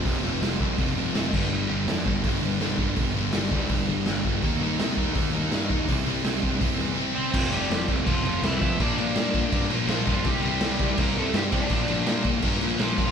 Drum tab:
CC |-------x|--------|--------|--------|
HH |o-o-o-o-|--o-o-o-|o-o-o-o-|o-o-o-o-|
SD |--o---o-|--o---o-|--o---o-|--o---o-|
BD |o--oo--o|---oo--o|o--oo--o|o--oo--o|

CC |--------|xxxxxxxx|xxxxxxxx|xxxxxxxx|
HH |o-o-o---|--------|--------|--------|
SD |--o-----|--o---o-|--o---o-|--o---o-|
BD |o--oo---|o--oo--o|o--oo--o|o--oo--o|

CC |xxxxxxxx|
HH |--------|
SD |--o---o-|
BD |o--oo--o|